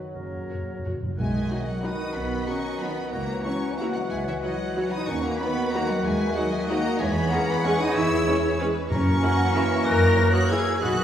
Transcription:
Already playing: trombone section D#3 F#3, bassoon F#3, french horn section B3 F#4, clarinet F#4
0.14 double bass section F#1, cello section F#2, timpani F#2, trombone section C#3, french horn section A#3, oboe A#4, flute C#5
0.30 timpani F#2
0.37 timpani F#2
0.46 timpani F#2, viola section F#4, violin section A#4 C#5
0.54 timpani F#2
0.62 timpani F#2
0.71 timpani F#2
0.79 timpani F#2
0.84 timpani F#2, viola section F#4, violin section A#4 C#5
0.95 timpani F#2
1.03 timpani F#2
1.10 timpani F#2
1.18 double bass section B1, timpani B2, bassoon D#3, cello section G#3, french horn section G#3, clarinet F#4, violin section D#5 G#5, flute E5, oboe F#5
1.50 trombone section D#3 F#3, viola section D#4 F#4
1.65 cello section F#3, french horn section F#3, flute D#5, violin section F#5
1.82 trombone section D#3 F#3, french horn section D#4, cello section D#4, viola section D#4 F#4, violin section B4, flute B5
1.86 violin section D#6
2.14 double bass section B1, french horn section B3, cello section B3, violin section D#5 B5, flute F#5
2.47 trombone section D#3 F#3, french horn section C#4, cello section C#4, viola section D#4 F#4, flute A#5, violin section C#6
2.80 trombone section D#3 F#3, cello section B3, french horn section B3, viola section D#4 F#4, flute F#5, violin section B5
3.12 double bass section C#2, bassoon E3, french horn section A#3, cello section A#3, clarinet F#4, violin section C#5 A#5, flute F#5, oboe F#5
3.43 trombone section E3 F#3, cello section C#4, french horn section C#4, viola section E4 F#4, flute A#5, violin section C#6
3.77 trombone section E3 F#3, french horn section A#3, cello section A#3, viola section E4 F#4, flute F#5, violin section F#5 A#5
3.95 cello section F#3, french horn section F#3, flute D#5, violin section F#5
4.09 double bass section C#2, cello section G#3, french horn section G#3, flute E5, violin section G#5
4.24 french horn section E3, cello section E3, flute C#5
4.28 violin section E5
4.41 trombone section E3 F#3, cello section F#3, french horn section F#3, viola section E4 F#4, flute C#5, violin section D#5 F#5
4.76 trombone section E3 F#3, viola section E4 F#4, violin section C#5
4.91 french horn section D#4, cello section D#4, flute B5, violin section D#6
5.07 double bass section D#2, bassoon D#3, french horn section C#4, cello section C#4, clarinet F#4, violin section B4 C#6, oboe F#5, flute A#5
5.22 french horn section A#3, cello section A#3, flute F#5, violin section A#5
5.40 trombone section D#3 F#3, french horn section B3, cello section B3, viola section D#4 F#4, flute F#5, violin section B5
5.72 trombone section D#3 F#3, french horn section A#3, cello section A#3, viola section D#4 F#4, flute F#5, violin section A#5
5.88 french horn section F#3, cello section F#3, flute D#5, violin section F#5
6.04 double bass section D#2, french horn section G#3, cello section G#3, violin section B4 G#5, flute E5
6.35 trombone section D#3 F#3, french horn section F#3, cello section F#3, viola section D#4 F#4, violin section D#5 F#5, flute D#5
6.52 cello section G#3, french horn section G#3, flute E5, violin section G#5
6.68 trombone section D#3 F#3, french horn section A#3, cello section A#3, viola section D#4 F#4, flute F#5, violin section A#5
6.99 double bass section E2, bassoon E3, french horn section G#3, cello section G#3, clarinet G#4, violin section C#5 G#5, oboe C#5, flute E5
7.15 cello section B3, french horn section B3, flute G#5, violin section B5
7.30 trombone section E3 G#3, cello section A#3, french horn section A#3, viola section C#4 G#4, violin section F#5 A#5, flute F#5
7.47 cello section B3, french horn section B3, flute G#5, violin section B5
7.63 trombone section E3 G#3, cello section C#4, french horn section C#4, viola section C#4 G#4, flute G#5, violin section C#6
7.80 french horn section D#4, cello section D#4, flute B5, violin section D#6
7.94 double bass section E2, french horn section E4, cello section E4, violin section E5 E6, flute C#6
8.24 trombone section E3 G#3, viola section C#4 G#4, violin section C#5
8.58 trombone section E3 G#3, viola section C#4 G#4, violin section B4
8.89 double bass section F#2, timpani F#2, trombone section E3 A#3, bassoon E3, french horn section C#4, cello section C#4, clarinet F#4, oboe A#4, violin section A#4 C#6, flute A#5
9.22 viola section E4 A#4, violin section F#5
9.54 viola section E4 A#4, violin section E5
9.84 double bass section F#2, french horn section A#4, cello section A#4, violin section D#5 A#6, flute F#6
10.16 viola section E4 A#4, violin section C#5
10.33 french horn section F#4, cello section F#4, flute D#6, violin section F#6
10.50 viola section E4 A#4, cello section G#4, french horn section G#4, flute E6, violin section G#6
10.81 double bass section B1, bassoon D#3, trombone section D#3 B3, french horn section F#4, cello section F#4, clarinet F#4, violin section B4 F#6, oboe B4, flute D#6

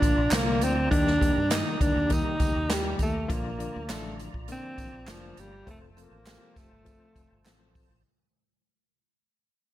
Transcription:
Already playing: reed electric piano D3 F3 A#3 D4 F4, alto saxophone D4, tonewheel organ F4 D5 A#5
0.02 fingered electric bass A1, kick, closed hi-hat, tambourine
0.17 fingered electric bass A#1
0.31 fingered electric bass C2, reed electric piano D3 F3 A#3 D4 F4, alto saxophone A#3, snare, clap, closed hi-hat, tambourine
0.61 fingered electric bass D2, alto saxophone C4, closed hi-hat, tambourine
0.91 fingered electric bass D#2, reed electric piano D#3 G3 A#3 D#4 G4, alto saxophone D4, tonewheel organ G4, kick, closed hi-hat
1.07 snare
1.21 reed electric piano D#3 G3 A#3 D#4 G4, kick, closed hi-hat, tambourine
1.37 fingered electric bass G2
1.51 reed electric piano D#3 G3 A#3 D#4 G4, alto saxophone D#4, snare, clap, closed hi-hat, tambourine
1.81 fingered electric bass D2, alto saxophone D4, kick, closed hi-hat, tambourine
1.96 fingered electric bass D#2
2.10 reed electric piano D#3 G3 A#3 D#4 G4, alto saxophone D#4, kick, closed hi-hat, tambourine
2.40 fingered electric bass D2, kick, closed hi-hat, tambourine
2.56 fingered electric bass D#2
2.69 reed electric piano D#3 G3 A#3 D#4 G4, alto saxophone G3, snare, clap, closed hi-hat, tambourine
2.99 fingered electric bass D#2, alto saxophone A3, kick, closed hi-hat, tambourine
3.28 fingered electric bass A#1, reed electric piano D3 F3 A#3 D4 F4, tonewheel organ F4 D5 A#5, kick, closed hi-hat, tambourine
3.33 alto saxophone A#3
3.59 reed electric piano D3 F3 A#3 D4 F4, closed hi-hat, tambourine
3.76 fingered electric bass D2
3.89 fingered electric bass A1, reed electric piano D3 F3 D4 F4, alto saxophone A3, snare, clap, closed hi-hat, tambourine
4.19 closed hi-hat, tambourine
4.34 fingered electric bass A#1, kick
4.48 reed electric piano D3 F3 A#3 D4 F4, closed hi-hat, tambourine
4.52 alto saxophone C4
4.78 fingered electric bass A1, kick, closed hi-hat, tambourine
4.92 fingered electric bass A#1
5.07 fingered electric bass F1, reed electric piano D3 F3 A#3 D4 F4, alto saxophone F3, snare, clap, closed hi-hat, tambourine
5.37 fingered electric bass G1, alto saxophone G3, closed hi-hat, tambourine
5.66 fingered electric bass F1, reed electric piano F3 A3 C4 F4 A4, alto saxophone A3, tonewheel organ C5 A5, kick, closed hi-hat, tambourine
5.91 alto saxophone A3
5.97 reed electric piano F3 A3 C4 F4 A4, alto saxophone A#3, closed hi-hat, tambourine
6.11 fingered electric bass A1
6.27 reed electric piano F3 C4 F4 G4 A4, snare, clap, closed hi-hat, tambourine
6.56 fingered electric bass F1, alto saxophone A3, kick, snare, closed hi-hat, tambourine
6.71 fingered electric bass G1
6.85 reed electric piano F3 A3 C4 F4 G#4, kick, closed hi-hat, tambourine
6.92 reed electric piano A4
7.16 fingered electric bass F1, kick, closed hi-hat, tambourine
7.30 fingered electric bass G1
7.44 fingered electric bass A1, reed electric piano F3 A3 C4 F4 A4, snare, clap, closed hi-hat, tambourine
7.75 kick, open hi-hat, tambourine
7.89 fingered electric bass A1

